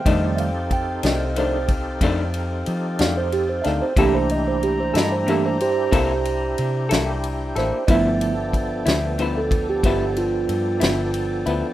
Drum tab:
RD |xxxxxxxxxxxx|xxxxxxxxxxxx|xxxxxxxxxxxx|
SD |---o-----o-o|---o-----o-o|---o-----o--|
BD |o-o--oo-----|o-----o-----|o-o--oo-----|